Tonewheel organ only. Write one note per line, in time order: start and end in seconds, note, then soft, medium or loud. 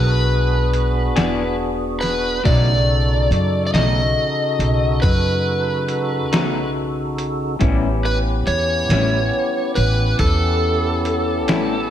0.00 2.40 B3 medium
0.00 2.40 D4 medium
0.00 2.40 F#4 medium
0.00 2.41 G#4 medium
2.44 7.57 C#3 medium
2.44 7.56 D#4 medium
2.44 7.56 F#4 medium
2.44 7.57 A4 medium
7.60 11.90 B3 medium
7.60 11.90 C#4 medium
7.60 11.90 E4 medium
7.60 11.90 G4 medium